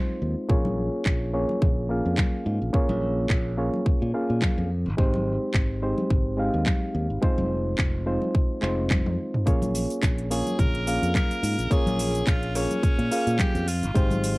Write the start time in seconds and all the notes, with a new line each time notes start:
Already playing: G#3 C4 D#4 F4 C5
0.22 D#2
0.49 A#1 A#3 C#4 F4 G#4 C#5, kick
0.65 high conga
1.06 A#1, kick, clap
1.33 A#3 C#4 F4 G#4 C#5
1.49 high conga
1.62 A#1, kick, low conga
1.89 A#3 C#4 F4 G#4 F5
2.05 F2
2.18 kick, clap, high conga
2.46 G#2
2.62 A#1
2.73 A#3 C#4 F4 G#4 C#5, kick
2.89 A#1, high conga
3.30 A#1, kick, clap
3.58 A#3 C#4 F4 G#4 C#5
3.74 high conga
3.86 kick
4.02 A#2
4.14 A#3 C#4 F4 G#4 F5
4.30 A#2
4.41 kick, clap, high conga
4.58 F2
4.86 G#1
4.97 G#1 G#3 C4 D#4 G4 C5, kick
5.14 high conga
5.54 G#1, kick, clap
5.82 G#3 C4 D#4 G4 C5
5.98 high conga
6.10 G#1, kick, low conga
6.37 G#3 C4 D#4 G4 F5
6.54 D#2
6.66 kick, clap, high conga
6.95 D#2
7.10 G#1
7.21 G#3 C4 D#4 F4 C5, kick
7.38 F1, high conga
7.78 F1, kick, clap
8.06 G#3 C4 D#4 F4 C5
8.22 high conga
8.35 kick
8.61 F1 G#3 C4 D#4 F4 C5, clap
8.90 kick, clap, high tom, high conga
9.06 F2, high tom
9.34 mid tom
9.46 A#1 A#3 C#4 F4 G#4 C#5, kick, closed hi-hat, cabasa
9.62 closed hi-hat, high conga, cabasa
9.75 open hi-hat, cabasa
9.90 closed hi-hat, cabasa
10.03 A#1, kick, clap, closed hi-hat, cabasa
10.18 closed hi-hat
10.30 A#3 C#4 F4 G#4 C#5, open hi-hat, cabasa
10.47 closed hi-hat, high conga, cabasa
10.59 A#1 A#4, kick, closed hi-hat, low conga, cabasa
10.75 closed hi-hat
10.86 A#3 C#4 F4 G#4 F5, open hi-hat, cabasa
11.02 F2, closed hi-hat, cabasa
11.15 A#4, kick, clap, closed hi-hat, high conga, cabasa
11.31 closed hi-hat, cabasa
11.43 G#2, open hi-hat, cabasa
11.58 A#1, closed hi-hat, cabasa
11.70 A#3 C#4 F4 G#4 C#5, kick, closed hi-hat, cabasa
11.86 A#1, closed hi-hat, high conga, cabasa
11.99 open hi-hat, cabasa
12.15 closed hi-hat, cabasa
12.27 A#1 F4, kick, clap, closed hi-hat, cabasa
12.43 closed hi-hat
12.55 A#3 C#4 F4 G#4 C#5, open hi-hat, cabasa
12.71 closed hi-hat, high conga, cabasa
12.83 kick, closed hi-hat, cabasa
12.99 A#2, closed hi-hat
13.11 A#3 C#4 F4 G#4 F5, open hi-hat, cabasa
13.27 A#2, closed hi-hat, cabasa
13.38 G4, kick, clap, closed hi-hat, high conga, cabasa
13.55 F2, closed hi-hat, cabasa
13.68 F4, open hi-hat, cabasa
13.83 G#1, closed hi-hat, cabasa
13.94 G#1 G#3 C4 D#4 G4 C5, kick, closed hi-hat, cabasa
14.10 closed hi-hat, high conga, cabasa
14.24 open hi-hat, cabasa